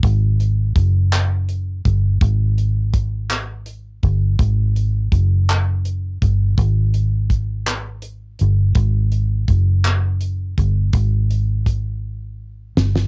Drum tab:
HH |x-x-x-x-x-x-|x-x-x-x-x-x-|x-x-x-x-x-x-|x-x-x-x-x-x-|
CP |------x-----|------x-----|------x-----|------x-----|
SD |------------|------------|------------|------------|
BD |o---o-----o-|o---o-----o-|o---o-----o-|o---o-------|

HH |x-x-x-x-x-x-|x-x-x-------|
CP |------x-----|------------|
SD |------------|----------oo|
BD |o---o-----o-|o---o-------|